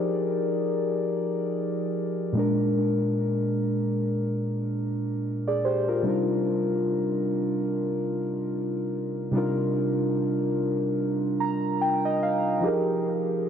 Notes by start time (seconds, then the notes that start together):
Already playing: F3 D#4 G4 G#4 A#4 D5
2.33 A#2 G#3
2.37 D4 A#4
5.48 G#4 D5
5.65 G4 C5
5.88 F4 A#4
6.03 C3 G3 D4 D#4
6.08 F4 A#4
9.31 C3 G3 D4 D#4
9.36 F4 A#4
11.40 A#5
11.81 G5
12.05 D#5
12.23 F5
12.61 F3 D#4 G4
12.65 G#4 A#4